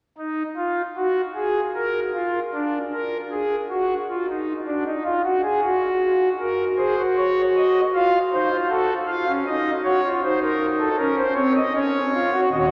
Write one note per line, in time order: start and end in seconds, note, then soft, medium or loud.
0.18 0.43 D#4 medium
0.57 0.82 F4 medium
0.97 1.21 F#4 medium
1.36 1.60 G#4 medium
1.75 2.00 A#4 medium
2.15 2.40 F4 medium
2.54 2.78 D4 medium
2.93 3.17 A#4 medium
3.31 3.56 G#4 medium
3.70 3.94 F#4 medium
4.10 4.26 F4 medium
4.29 4.53 D#4 medium
4.67 4.84 D4 medium
4.86 5.03 D#4 medium
5.05 5.22 F4 medium
5.24 5.41 F#4 medium
5.43 5.60 G#4 medium
5.63 6.29 F#4 medium
6.40 6.64 A#4 medium
6.78 6.95 G#4 medium
6.78 7.02 C5 medium
6.98 7.81 F#4 medium
7.17 7.41 C#5 medium
7.56 7.80 D#5 medium
7.95 8.19 F4 medium
7.95 8.19 F5 medium
8.33 8.49 D#4 medium
8.33 8.56 C5 medium
8.51 8.68 F4 medium
8.70 8.94 F#4 medium
8.70 8.94 A4 medium
9.08 9.25 F4 medium
9.08 9.32 F5 medium
9.28 9.44 C#4 medium
9.47 9.70 D#4 medium
9.47 9.70 D#5 medium
9.84 10.01 F#4 soft
9.84 10.08 C#5 medium
10.03 10.20 F4 medium
10.23 10.89 D#4 medium
10.23 10.40 C5 medium
10.42 10.66 A#4 medium
10.80 10.96 A4 medium
10.98 11.22 C#4 medium
10.98 11.15 A#4 medium
11.17 11.34 C5 medium
11.35 11.59 C4 medium
11.35 11.53 C#5 medium
11.56 11.73 D#5 medium
11.74 11.98 C#4 medium
11.74 12.40 C#5 medium
12.14 12.30 F4 medium
12.32 12.49 F#4 medium
12.52 12.71 D#1 medium
12.52 12.71 D#2 medium
12.52 12.71 F#4 medium
12.52 12.56 D#5 medium
12.58 12.65 C#5 medium
12.65 12.71 D#5 medium